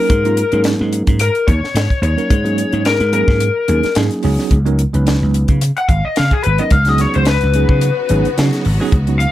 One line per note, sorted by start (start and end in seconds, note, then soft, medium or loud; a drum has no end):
0.00 0.12 F#3 medium
0.00 0.12 A#3 medium
0.00 0.12 C#4 medium
0.00 0.13 D#4 medium
0.00 0.13 A#4 medium
0.00 0.61 A#4 medium
0.09 0.42 G#2 medium
0.09 kick medium
0.09 closed hi-hat medium
0.24 0.40 F#3 medium
0.24 0.40 A#3 medium
0.24 0.40 C#4 medium
0.24 0.40 D#4 medium
0.24 0.41 F4 medium
0.24 closed hi-hat soft
0.37 closed hi-hat medium
0.52 0.74 G#2 medium
0.52 1.18 F#3 medium
0.52 1.18 A#3 medium
0.52 1.18 C#4 medium
0.52 1.18 D#4 medium
0.52 1.18 A#4 medium
0.52 closed hi-hat soft
0.64 snare medium
0.64 closed hi-hat medium
0.81 1.02 G#2 medium
0.93 closed hi-hat medium
1.07 1.29 G#2 medium
1.07 kick medium
1.07 closed hi-hat soft
1.19 1.47 A#4 medium
1.19 closed hi-hat medium
1.35 closed hi-hat soft
1.47 1.59 D#2 medium
1.47 1.99 C#5 medium
1.47 kick medium
1.47 closed hi-hat medium
1.63 muted slap bass stroke soft
1.63 snare soft
1.75 1.86 G#2 medium
1.75 snare loud
1.75 closed hi-hat medium
1.90 kick medium
1.90 closed hi-hat soft
2.02 2.14 D#2 loud
2.02 2.82 C#5 medium
2.02 closed hi-hat medium
2.17 2.33 F#3 medium
2.17 2.33 A#3 medium
2.17 2.33 C#4 medium
2.17 2.33 D#4 medium
2.17 2.33 A#4 medium
2.17 closed hi-hat soft
2.30 2.63 G#2 medium
2.30 kick medium
2.30 closed hi-hat medium
2.44 2.85 F#3 medium
2.44 2.85 A#3 medium
2.44 2.85 C#4 medium
2.44 2.85 D#4 medium
2.44 2.86 G#4 medium
2.44 closed hi-hat soft
2.58 closed hi-hat medium
2.73 2.94 G#2 medium
2.73 closed hi-hat soft
2.85 3.13 A#4 medium
2.85 snare medium
2.85 closed hi-hat medium
3.00 3.22 G#2 medium
3.00 closed hi-hat soft
3.12 3.47 F#3 medium
3.12 3.46 A#3 medium
3.12 3.47 C#4 medium
3.12 3.47 D#4 medium
3.12 3.47 G#4 medium
3.12 3.92 A#4 medium
3.12 closed hi-hat medium
3.28 3.49 G#2 medium
3.28 kick medium
3.28 snare soft
3.40 closed hi-hat medium
3.68 3.80 D#2 medium
3.68 3.86 F#3 medium
3.68 3.86 A#3 medium
3.68 3.86 C#4 medium
3.68 3.86 D#4 medium
3.68 3.86 G#4 medium
3.68 closed hi-hat medium
3.83 muted slap bass stroke soft
3.83 snare soft
3.83 closed hi-hat soft
3.95 4.08 G#2 medium
3.95 4.21 F#3 medium
3.95 4.21 A#3 medium
3.95 4.21 C#4 medium
3.95 4.21 D#4 medium
3.95 4.22 G#4 medium
3.95 snare loud
3.95 closed hi-hat medium
4.11 closed hi-hat soft
4.23 4.36 C#2 medium
4.23 4.57 F#3 medium
4.23 4.57 B3 medium
4.23 4.57 C#4 medium
4.23 4.58 D#4 medium
4.23 4.58 G#4 medium
4.23 open hi-hat medium
4.39 snare soft
4.51 4.84 C#2 medium
4.51 kick medium
4.51 closed hi-hat medium
4.65 4.81 F#3 medium
4.65 4.82 B3 medium
4.65 4.82 C#4 medium
4.65 4.82 D#4 medium
4.65 4.82 A#4 medium
4.65 closed hi-hat soft
4.79 closed hi-hat medium
4.94 5.15 C#2 medium
4.94 5.59 F#3 medium
4.94 5.59 B3 medium
4.94 5.59 C#4 medium
4.94 5.59 D#4 medium
4.94 5.60 B4 medium
4.94 closed hi-hat soft
5.07 snare medium
5.07 closed hi-hat medium
5.22 5.43 C#2 medium
5.34 closed hi-hat medium
5.48 5.70 C#3 medium
5.48 kick medium
5.48 closed hi-hat soft
5.61 closed hi-hat loud
5.77 5.89 F#5 medium
5.77 closed hi-hat soft
5.89 6.00 G#1 medium
5.89 6.04 F5 medium
5.89 kick medium
5.89 closed hi-hat medium
6.05 6.18 D#5 medium
6.05 muted slap bass stroke soft
6.16 6.30 C#3 medium
6.16 6.32 F5 medium
6.16 snare loud
6.16 closed hi-hat medium
6.31 6.44 G#4 medium
6.31 kick medium
6.31 closed hi-hat soft
6.44 6.57 G#1 loud
6.44 6.59 B4 medium
6.44 closed hi-hat medium
6.58 6.75 F#3 medium
6.58 6.75 B3 medium
6.58 6.75 C#4 medium
6.58 6.75 D#4 medium
6.58 6.76 A#4 medium
6.58 6.72 D#5 medium
6.58 closed hi-hat soft
6.69 7.04 C#2 medium
6.69 9.32 C#3 medium
6.69 9.32 B3 medium
6.69 9.32 D#4 medium
6.69 9.32 F#4 medium
6.69 6.89 F5 loud
6.69 kick loud
6.69 closed hi-hat medium
6.85 7.27 F#3 medium
6.85 7.28 B3 medium
6.85 7.28 C#4 medium
6.85 7.28 D#4 medium
6.85 snare soft
6.85 closed hi-hat soft
6.89 7.28 G#4 medium
6.89 7.01 D#5 medium
6.98 7.15 C#5 medium
6.98 snare soft
6.98 closed hi-hat medium
7.14 7.36 C#2 medium
7.14 7.27 C5 medium
7.14 closed hi-hat soft
7.25 8.34 B4 medium
7.25 snare loud
7.25 closed hi-hat medium
7.41 7.64 C#2 loud
7.41 closed hi-hat soft
7.54 7.88 F#3 medium
7.54 7.88 B3 medium
7.54 7.89 C#4 medium
7.54 7.89 D#4 medium
7.54 7.89 G#4 medium
7.54 closed hi-hat medium
7.69 7.90 C#3 medium
7.69 kick medium
7.81 closed hi-hat medium
8.09 8.22 G#1 loud
8.09 8.27 F#3 medium
8.09 8.27 B3 medium
8.09 8.27 C#4 medium
8.09 8.28 D#4 medium
8.09 8.28 G#4 medium
8.09 closed hi-hat medium
8.25 muted slap bass stroke soft
8.25 closed hi-hat soft
8.37 8.50 C#3 medium
8.37 8.62 F#3 medium
8.37 8.63 B3 medium
8.37 8.63 C#4 medium
8.37 8.63 D#4 medium
8.37 8.63 G#4 medium
8.37 snare loud
8.37 closed hi-hat medium
8.53 snare soft
8.53 closed hi-hat soft
8.65 8.77 G#1 loud
8.65 open hi-hat medium
8.80 8.96 F#3 loud
8.80 8.96 B3 medium
8.80 8.96 C#4 medium
8.80 8.96 D#4 medium
8.80 8.96 G#4 loud
8.92 9.25 C#2 medium
8.92 kick loud
8.92 closed hi-hat medium
9.07 9.23 F#3 medium
9.07 9.23 B3 medium
9.07 9.24 C#4 medium
9.07 9.23 D#4 medium
9.07 9.24 F#4 medium
9.07 closed hi-hat soft
9.19 9.32 F5 medium
9.19 closed hi-hat medium